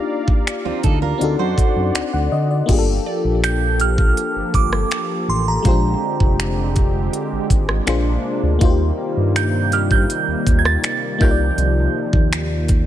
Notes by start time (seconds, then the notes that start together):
Already playing: A#3 D4 D#4 F4 G4 D5 F5 A#5
0.28 kick
0.47 finger snap, closed hi-hat
0.65 D2 C4 F4
0.83 D2 D#4 A4, kick, closed hi-hat
1.02 F4 A#4
1.18 D2 C4 D4 D#4 D5 F#5 C6, closed hi-hat
1.22 F#4 A4
1.39 F#2 F#4 C5
1.58 kick, closed hi-hat
1.76 F#2
1.95 D2 D5, finger snap, closed hi-hat
2.13 D2 F#5
2.32 D3 D#5
2.51 D5
2.66 G1 F3 A#3 D4 F4 G4 A4, kick, closed hi-hat, crash
2.70 G4 G#4
2.78 A4
3.06 D5
3.24 A#1
3.44 G6, finger snap, closed hi-hat
3.80 F6, closed hi-hat
3.98 kick
4.17 closed hi-hat
4.36 G1
4.54 G1 D6, kick, closed hi-hat
4.73 cross-stick
4.91 finger snap, closed hi-hat
5.28 A1 C6
5.48 A#5
5.62 A#1 D3 G#3 C4 F4 G4 C5, kick, closed hi-hat
5.67 D4 G4 C5
6.20 F1, kick
6.40 finger snap, closed hi-hat
6.76 kick, closed hi-hat
7.13 closed hi-hat
7.32 G#1
7.50 G#1, kick, closed hi-hat
7.69 cross-stick
7.86 A#1 C3 A#3 D4 F4 G#4 C5, finger snap, closed hi-hat
8.43 D2
8.59 D#2 D#3 G3 A#3 D#4 F4, kick, closed hi-hat
8.64 F#4 C5
8.70 G4
9.17 G2
9.36 G6, finger snap, closed hi-hat
9.72 G4 F6, closed hi-hat
9.91 G6, kick
10.10 closed hi-hat
10.28 D#2
10.47 D#2, kick, closed hi-hat
10.59 G#6
10.65 A6, cross-stick
10.84 finger snap, closed hi-hat
11.18 C2 C3 F3 A#3 D#4 F4 A#4 G6, kick
11.23 G4 C#5
11.31 D5
11.58 C2, closed hi-hat
12.13 D#2, kick
12.33 finger snap, closed hi-hat
12.68 kick, closed hi-hat